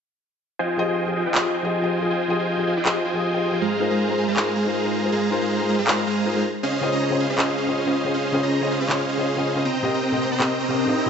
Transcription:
0.59 F4 C5 D#5 G5 G#5
0.77 F3 F4 G4 G#4 D#5
0.88 F4 C5 D#5 G5 G#5
1.06 F3 F4 G4 G#4 D#5
1.16 F4 C5 D#5 G5 G#5
1.26 F4 C5 D#5 G5 G#5
1.34 F3 F4 G4 G#4 D#5, clap
1.54 F4 C5 D#5 G5 G#5
1.63 F3 F4 G4 G#4 D#5
1.82 F3 F4 G4 G#4 D#5
2.00 F3 F4 G4 G#4 D#5
2.10 F4 C5 D#5 G5 G#5
2.28 F3 F4 G4 G#4 D#5
2.39 F4 C5 D#5 G5 G#5
2.57 F3 F4 G4 G#4 D#5
2.67 F4 C5 D#5 G5 G#5
2.77 F4 C5 D#5 G5 G#5
2.85 F3 F4 G4 G#4 D#5, clap
3.05 F4 C5 D#5 G5 G#5
3.14 F3 F4 G4 G#4 D#5
3.33 F3 F4 G4 G#4 D#5
3.51 F3 F4 G4 G#4 D#5
3.61 G#3 G#4 C5 F5 A#5
3.79 G#3 D#4 F4 A#4 C5
3.90 G#3 G#4 C5 F5 A#5
4.08 G#3 D#4 F4 A#4 C5
4.18 G#3 G#4 C5 F5 A#5
4.28 G#3 G#4 C5 F5 A#5
4.36 G#3 D#4 F4 A#4 C5, clap
4.56 G#3 G#4 C5 F5 A#5
4.65 G#3 D#4 F4 A#4 C5
4.83 G#3 D#4 F4 A#4 C5
5.02 G#3 D#4 F4 A#4 C5
5.12 G#3 G#4 C5 F5 A#5
5.30 G#3 D#4 F4 A#4 C5
5.41 G#3 G#4 C5 F5 A#5
5.59 G#3 D#4 F4 A#4 C5
5.69 G#3 G#4 C5 F5 A#5
5.79 G#3 G#4 C5 F5 A#5
5.87 G#3 D#4 F4 A#4 C5, clap
6.06 G#3 G#4 C5 F5 A#5
6.24 G#3 D#4 F4 A#4 C5
6.34 G#3 D#4 F4 A#4 C5
6.63 C#4 G#4 C5 D#5 F5
6.81 C#3 C#4 F4 C5 D#5
6.92 C#4 G#4 C5 D#5 A#5
7.10 C#3 C#4 F4 C5 D#5
7.20 C#4 G#4 C5 D#5 F5
7.30 C#4 G#4 C5 D#5 F5
7.38 C#3 C#4 F4 C5 D#5, clap
7.57 C#4 G#4 C5 D#5 F5
7.67 C#3 C#4 F4 C5 D#5
7.85 C#3 C#4 F4 C5 D#5
8.04 C#3 C#4 F4 C5 D#5
8.14 C#4 G#4 C5 D#5 F5
8.32 C#3 C#4 F4 C5 D#5
8.43 C#4 G#4 C5 D#5 A#5
8.61 C#3 C#4 F4 C5 D#5
8.71 C#4 G#4 C5 D#5 F5
8.81 C#4 G#4 C5 D#5 F5
8.88 C#3 C#4 F4 C5 D#5, clap
9.08 C#4 G#4 C5 D#5 F5
9.17 C#3 C#4 F4 C5 D#5
9.36 C#3 C#4 F4 C5 D#5
9.55 C#3 C#4 F4 C5 D#5
9.65 C4 C5 D#5 G5 A#5, riser
9.83 C3 C4 G4 A#4 D#5
9.94 C4 C5 D#5 G5 A#5
10.12 C3 C4 G4 A#4 D#5
10.22 C4 C5 D#5 G5 A#5
10.32 C4 C5 D#5 G5 A#5
10.39 C3 C4 G4 A#4 D#5, clap
10.59 C4 C5 D#5 G5 A#5
10.68 C3 C4 G4 A#4 D#5
10.87 C3 C4 G4 A#4 D#5
11.06 C3 C4

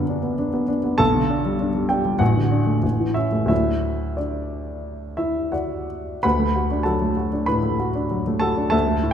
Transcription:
Already playing: B1 F#2 D3 B3 D4 F#4 B4 F#5 B5
0.09 D4
0.23 B3
0.39 D4
0.54 B3
0.68 D4
0.84 B3
0.98 B1 A4 A5
1.15 D3
1.30 D4
1.45 G3
1.61 D4
1.75 G3
1.89 D4 G4 G5
2.05 G3
2.19 A1 F#4 F#5
2.36 D3
2.51 D4
2.67 A3
2.83 A1
3.00 E3
3.14 C#4 E4 E5
3.32 A3
3.46 D2 F#3 A3 D4 E5
3.50 E4
4.17 D4 D5
5.17 E4 E5
5.52 F#4 D5 F#5
6.23 D2 B4 F#5 B5
6.40 A3
6.56 F#4
6.71 D4
6.83 F#3 A4 F#5 A5
7.02 A3
7.17 F#4
7.33 D4
7.46 A2 B4 B5
7.63 A3
7.80 F#4
7.95 D4
8.11 F#3
8.27 A3
8.40 F#4 A4 A5
8.57 D4
8.70 D2 A4 E5 A5
8.87 A3
9.03 A2

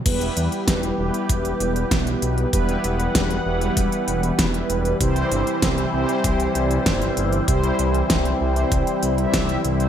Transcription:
0.06 E1 E3 G3 B3 E4 G4 B4, kick, closed hi-hat, crash
0.21 closed hi-hat
0.37 E2, closed hi-hat
0.52 closed hi-hat
0.68 E1, kick, snare, closed hi-hat
0.83 closed hi-hat
0.98 E1 G3 B3 E4 G4 B4
1.14 closed hi-hat
1.29 E1, kick, closed hi-hat
1.45 closed hi-hat
1.60 E1, closed hi-hat
1.76 closed hi-hat
1.91 B1, kick, snare, closed hi-hat
2.07 closed hi-hat
2.22 B1, closed hi-hat
2.38 closed hi-hat
2.53 E1 G3 B3 E4 G4 B4 F#5, kick, closed hi-hat
2.69 closed hi-hat
2.84 E1, closed hi-hat
3.00 closed hi-hat
3.15 E1, kick, snare, closed hi-hat
3.30 closed hi-hat
3.46 E1 G3 B3 E4 G4 B4
3.61 closed hi-hat
3.77 E1, kick, closed hi-hat
3.92 closed hi-hat
4.08 E1, closed hi-hat
4.23 closed hi-hat
4.39 E1, kick, snare, closed hi-hat
4.54 closed hi-hat
4.70 E1, closed hi-hat
4.85 closed hi-hat
5.00 C2 C3 G3 C4 E4 G4 C5, kick, closed hi-hat
5.16 closed hi-hat
5.31 G1, closed hi-hat
5.47 closed hi-hat
5.62 C2, kick, snare, closed hi-hat
5.78 closed hi-hat
5.93 C2 C3 G3 C4 E4 G4 C5
6.09 closed hi-hat
6.24 C2, kick, closed hi-hat
6.40 closed hi-hat
6.55 C2, closed hi-hat
6.71 closed hi-hat
6.86 G1, kick, snare, closed hi-hat
7.02 closed hi-hat
7.17 G1, closed hi-hat
7.33 closed hi-hat
7.48 C2 C3 G3 C4 E4 G4 C5, kick, closed hi-hat
7.64 closed hi-hat
7.79 C2, closed hi-hat
7.94 closed hi-hat
8.10 C2, kick, snare, closed hi-hat
8.25 closed hi-hat
8.41 C2 C3 G3 C4 E4 G4 C5
8.56 closed hi-hat
8.72 C2, kick, closed hi-hat
8.87 closed hi-hat
9.03 C2, closed hi-hat
9.18 C3 G3 C4 E4 G4 E5, closed hi-hat
9.34 C2, kick, snare, closed hi-hat
9.49 closed hi-hat
9.64 C2 G2 G3 C4 E4 G4 C5, closed hi-hat
9.80 closed hi-hat

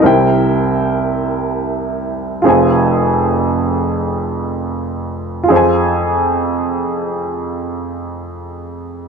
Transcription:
0.02 C2 C3 E4 A#4 C5
0.06 G5
2.42 F1 F2 F4 G#4
2.46 C5 G#5
5.43 F4
5.48 F2 G#4 C5
5.56 G#5

